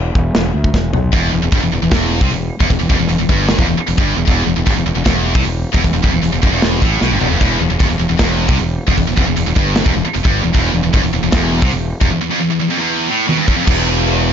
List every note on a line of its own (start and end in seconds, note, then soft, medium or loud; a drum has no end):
0.00 0.11 E1 medium
0.15 0.31 E1 loud
0.15 kick medium
0.35 0.50 E1 medium
0.35 snare loud
0.35 china medium
0.54 0.70 D2 medium
0.64 kick medium
0.74 0.90 E1 medium
0.74 kick medium
0.74 snare medium
0.93 1.09 B1 medium
0.93 floor tom medium
1.12 1.31 E1 medium
1.12 1.30 E2 loud
1.12 kick loud
1.12 open hi-hat medium
1.31 1.42 E1 medium
1.31 1.41 E2 medium
1.42 1.52 E1 medium
1.42 1.52 E2 medium
1.52 1.61 G1 medium
1.52 1.61 G2 loud
1.52 kick loud
1.52 open hi-hat medium
1.62 1.72 E1 medium
1.62 1.72 E2 medium
1.73 1.82 E1 medium
1.73 1.81 E2 medium
1.82 1.91 E1 medium
1.82 1.90 E2 medium
1.91 2.19 E1 medium
1.91 2.20 E2 medium
1.91 kick loud
1.91 snare loud
1.91 open hi-hat medium
2.21 2.30 C2 loud
2.21 2.31 C3 loud
2.21 kick loud
2.30 2.49 E1 medium
2.30 2.47 E2 medium
2.30 open hi-hat medium
2.60 2.70 E1 medium
2.60 2.69 E2 medium
2.60 kick loud
2.70 2.79 E1 medium
2.70 2.78 E2 medium
2.70 kick medium
2.70 open hi-hat soft
2.79 2.90 E1 medium
2.79 2.89 E2 medium
2.89 2.99 F1 medium
2.89 2.99 F2 loud
2.89 kick loud
2.99 3.09 E1 medium
2.99 3.09 E2 medium
3.09 3.19 E1 medium
3.09 3.18 E2 medium
3.09 open hi-hat medium
3.19 3.29 E1 medium
3.19 3.29 E2 medium
3.29 3.57 G1 medium
3.29 3.58 G2 medium
3.29 kick medium
3.48 snare loud
3.48 open hi-hat medium
3.58 3.68 E1 medium
3.58 3.67 E2 medium
3.58 kick loud
3.68 3.78 E1 medium
3.68 3.77 E2 medium
3.78 muted distorted electric guitar stroke medium
3.78 muted fingered electric bass stroke soft
3.87 3.97 E1 medium
3.87 3.97 E2 medium
3.87 open hi-hat medium
3.97 4.16 G1 medium
3.97 4.16 G2 medium
3.97 kick loud
4.16 4.27 E1 medium
4.16 4.24 E2 medium
4.25 4.46 E1 medium
4.25 4.45 E2 loud
4.25 kick medium
4.25 open hi-hat medium
4.46 4.56 E1 medium
4.46 4.55 E2 medium
4.56 4.66 E1 medium
4.56 4.65 E2 medium
4.66 4.76 G1 medium
4.66 4.75 G2 loud
4.66 kick loud
4.66 open hi-hat medium
4.75 4.86 E1 medium
4.75 4.85 E2 medium
4.86 4.95 E1 medium
4.86 4.94 E2 medium
4.95 5.05 E1 medium
4.95 5.03 E2 medium
5.04 5.33 E1 medium
5.04 5.34 E2 loud
5.04 kick loud
5.04 snare loud
5.04 open hi-hat medium
5.34 5.44 C2 medium
5.34 5.44 C3 loud
5.34 kick loud
5.44 5.63 E1 medium
5.44 5.60 E2 medium
5.44 open hi-hat medium
5.73 5.84 E1 medium
5.73 5.82 E2 medium
5.73 kick loud
5.84 5.93 E1 medium
5.84 5.92 E2 medium
5.84 kick medium
5.84 open hi-hat medium
5.93 6.03 E1 medium
5.93 6.03 E2 medium
6.03 6.13 F1 medium
6.03 6.11 F2 loud
6.03 kick medium
6.12 6.23 E1 medium
6.12 6.20 E2 medium
6.22 6.32 E1 medium
6.22 6.31 E2 medium
6.22 open hi-hat medium
6.32 6.42 E1 medium
6.32 6.42 E2 medium
6.42 6.52 F1 medium
6.42 6.51 F2 medium
6.42 kick loud
6.52 6.80 E1 medium
6.52 6.81 E2 loud
6.62 snare loud
6.62 open hi-hat medium
6.81 7.01 A1 medium
6.81 7.01 A2 medium
6.81 kick loud
7.01 7.11 B1 medium
7.01 7.11 B2 medium
7.01 snare medium
7.11 7.21 G1 medium
7.11 7.19 G2 loud
7.20 7.31 E1 medium
7.20 7.30 E2 medium
7.20 floor tom medium
7.30 7.40 F1 medium
7.30 7.39 F2 medium
7.39 7.59 E1 medium
7.39 7.59 E2 loud
7.39 kick medium
7.39 open hi-hat soft
7.39 crash medium
7.60 7.70 E1 medium
7.60 7.69 E2 medium
7.70 7.80 E1 medium
7.70 7.79 E2 medium
7.79 7.89 G1 medium
7.79 7.88 G2 medium
7.79 kick loud
7.79 open hi-hat medium
7.89 7.99 E1 medium
7.89 7.97 E2 medium
7.98 8.09 E1 medium
7.98 8.08 E2 medium
8.09 8.19 E1 medium
8.09 8.16 E2 medium
8.17 8.47 E1 medium
8.17 8.47 E2 loud
8.17 kick loud
8.17 snare loud
8.17 open hi-hat medium
8.46 8.58 C2 loud
8.46 8.57 C3 loud
8.46 kick loud
8.56 8.77 E1 medium
8.56 8.73 E2 medium
8.56 open hi-hat medium
8.87 8.97 E1 medium
8.87 8.96 E2 medium
8.87 kick loud
8.97 9.07 E1 medium
8.97 9.06 E2 medium
8.97 kick medium
8.97 open hi-hat medium
9.07 9.17 E1 medium
9.07 9.16 E2 medium
9.16 9.27 F1 medium
9.16 9.26 F2 loud
9.16 kick medium
9.26 9.37 E1 medium
9.26 9.35 E2 medium
9.36 9.47 E1 medium
9.36 9.45 E2 medium
9.36 open hi-hat medium
9.46 9.56 E1 medium
9.46 9.56 E2 medium
9.56 9.84 G1 medium
9.56 9.85 G2 loud
9.56 kick medium
9.76 snare loud
9.76 open hi-hat medium
9.86 9.95 E1 medium
9.86 9.95 E2 medium
9.86 kick loud
9.96 10.05 E1 medium
9.96 10.04 E2 medium
10.05 muted distorted electric guitar stroke medium
10.05 muted fingered electric bass stroke soft
10.14 10.24 E1 medium
10.14 10.23 E2 medium
10.14 open hi-hat medium
10.24 10.43 G1 medium
10.24 10.43 G2 loud
10.24 kick loud
10.43 10.54 E1 medium
10.43 10.52 E2 medium
10.53 10.73 E1 medium
10.53 10.71 E2 loud
10.53 kick medium
10.53 open hi-hat soft
10.73 10.83 E1 medium
10.73 10.82 E2 medium
10.84 10.93 E1 medium
10.84 10.93 E2 medium
10.93 11.03 G1 medium
10.93 11.03 G2 loud
10.93 kick loud
10.93 open hi-hat medium
11.03 11.13 E1 medium
11.03 11.12 E2 medium
11.13 11.23 E1 medium
11.13 11.21 E2 medium
11.23 11.32 E1 medium
11.23 11.30 E2 medium
11.31 11.60 E1 loud
11.31 11.61 E2 loud
11.31 kick loud
11.31 snare loud
11.31 open hi-hat medium
11.62 11.71 C2 loud
11.62 11.71 C3 loud
11.62 kick loud
11.71 11.91 E1 medium
11.71 11.88 E2 medium
11.71 open hi-hat medium
12.01 12.11 E1 medium
12.01 12.10 E2 medium
12.01 kick medium
12.11 12.20 E2 medium
12.21 12.31 E2 medium
12.32 12.40 F2 loud
12.41 12.51 E2 medium
12.52 12.60 E2 medium
12.61 12.70 E2 medium
12.71 12.80 F2 loud
12.81 13.09 E2 loud
13.09 13.28 A2 loud
13.29 13.38 B2 medium
13.29 high tom medium
13.39 13.47 G2 loud
13.47 13.57 E2 medium
13.47 kick medium
13.59 13.68 F2 loud
13.67 14.33 E1 medium
13.67 14.33 E2 loud
13.67 kick loud
13.67 crash loud
13.67 china medium
14.07 china medium